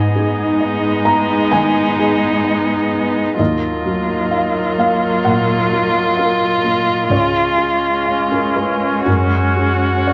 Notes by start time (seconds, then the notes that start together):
Already playing: G#2 G#3 B3 D#4 G#4 D#5 G#5
0.15 G#4
0.60 D#5
1.05 B3 A#5
1.52 D#3 G#5
1.98 G#4
2.44 D#5
2.91 B3
3.37 D#2 F#3 A#3 F4 D#5
3.85 F#3
4.31 F5
4.78 A#3 F5
5.25 A#2 F#5
5.71 F#3
6.17 A#4 F5
6.64 A#3
7.10 C#2 G#3 C#4 G#4 C#5
7.57 G#4
8.06 F5
8.32 A#4
8.55 C#4 B4
9.05 F#2 F#4 A#4 F#5
9.57 G#4
10.07 C#5